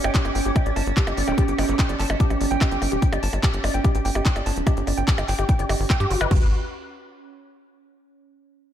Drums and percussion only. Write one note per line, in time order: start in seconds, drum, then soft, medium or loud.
0.04 percussion blips medium
0.15 kick loud
0.15 clap loud
0.15 closed hi-hat medium
0.25 closed hi-hat soft
0.25 percussion blips soft
0.35 open hi-hat loud
0.45 closed hi-hat soft
0.56 kick loud
0.56 closed hi-hat medium
0.56 percussion blips medium
0.66 closed hi-hat soft
0.76 open hi-hat loud
0.76 percussion blips soft
0.87 closed hi-hat soft
0.97 kick loud
0.97 clap loud
0.97 closed hi-hat medium
1.07 closed hi-hat soft
1.07 percussion blips medium
1.17 open hi-hat loud
1.28 closed hi-hat soft
1.28 percussion blips soft
1.38 kick loud
1.38 closed hi-hat medium
1.48 closed hi-hat soft
1.58 open hi-hat loud
1.58 percussion blips medium
1.69 closed hi-hat soft
1.79 kick loud
1.79 clap loud
1.79 closed hi-hat medium
1.79 percussion blips soft
1.89 closed hi-hat soft
2.00 clap soft
2.00 open hi-hat loud
2.10 closed hi-hat soft
2.10 percussion blips medium
2.20 kick loud
2.20 closed hi-hat medium
2.30 closed hi-hat soft
2.30 percussion blips soft
2.41 open hi-hat loud
2.51 closed hi-hat soft
2.61 kick loud
2.61 clap loud
2.61 closed hi-hat medium
2.61 percussion blips medium
2.71 closed hi-hat soft
2.82 open hi-hat loud
2.82 percussion blips soft
3.02 kick loud
3.02 closed hi-hat medium
3.13 closed hi-hat soft
3.13 percussion blips medium
3.23 open hi-hat loud
3.33 closed hi-hat soft
3.33 percussion blips soft
3.43 kick loud
3.43 clap loud
3.43 closed hi-hat medium
3.54 closed hi-hat soft
3.64 open hi-hat loud
3.64 percussion blips medium
3.74 closed hi-hat soft
3.84 kick loud
3.84 closed hi-hat medium
3.84 percussion blips soft
3.95 closed hi-hat soft
4.05 open hi-hat loud
4.15 closed hi-hat soft
4.15 percussion blips medium
4.26 kick loud
4.26 clap loud
4.26 closed hi-hat medium
4.36 closed hi-hat soft
4.36 percussion blips soft
4.46 open hi-hat loud
4.56 closed hi-hat soft
4.67 kick loud
4.67 closed hi-hat medium
4.67 percussion blips medium
4.77 closed hi-hat soft
4.87 open hi-hat loud
4.87 percussion blips soft
4.98 closed hi-hat soft
5.08 kick loud
5.08 clap loud
5.08 closed hi-hat medium
5.18 closed hi-hat soft
5.18 percussion blips medium
5.28 clap soft
5.28 open hi-hat loud
5.39 closed hi-hat soft
5.39 percussion blips soft
5.49 kick loud
5.49 closed hi-hat medium
5.59 closed hi-hat soft
5.69 open hi-hat loud
5.69 percussion blips medium
5.80 open hi-hat medium
5.90 kick loud
5.90 clap loud
5.90 closed hi-hat medium
5.90 percussion blips soft
6.00 closed hi-hat soft
6.11 open hi-hat loud
6.21 closed hi-hat soft
6.21 percussion blips medium
6.31 kick loud
6.31 floor tom loud
6.31 crash medium